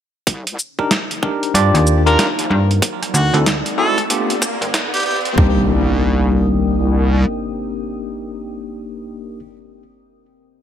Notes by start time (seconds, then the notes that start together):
0.27 C2 D#4, kick, closed hi-hat, riser
0.39 A#4
0.47 closed hi-hat
0.59 shaker
0.75 C5, kick
0.79 D4 D#4 G4 A#4 G5
0.91 snare, closed hi-hat
1.11 closed hi-hat
1.23 D4 D#4 G4 A#4, kick
1.43 closed hi-hat
1.54 G2 D4 F4 G4 D5, closed hi-hat
1.74 D#2, cross-stick, closed hi-hat
1.87 shaker
2.06 D4 F4 G4 A#4 D5, closed hi-hat
2.19 D#2, snare, closed hi-hat
2.39 closed hi-hat
2.50 G2
2.71 closed hi-hat
2.82 C4, kick, closed hi-hat
3.03 cross-stick, closed hi-hat
3.14 D2 F#4 A4, cross-stick, shaker
3.33 D2 C4 E4 F#4 A4, closed hi-hat
3.46 snare, closed hi-hat
3.66 closed hi-hat
3.78 C4 E4 F#4 A4
3.98 kick, closed hi-hat
4.10 B3 D4 F4 G4, closed hi-hat
4.27 G4, closed hi-hat
4.42 kick, cross-stick, shaker
4.61 G1 F5, closed hi-hat
4.74 snare, closed hi-hat
4.94 G4, closed hi-hat
4.97 closed hi-hat
5.03 closed hi-hat
5.06 G4, closed hi-hat
5.11 closed hi-hat
5.16 closed hi-hat
5.21 closed hi-hat
5.25 D2, closed hi-hat
5.37 C2 A#3 C4 D4 D#4 G4, kick, floor tom, impact
5.49 A#4
5.59 D#6
5.65 G5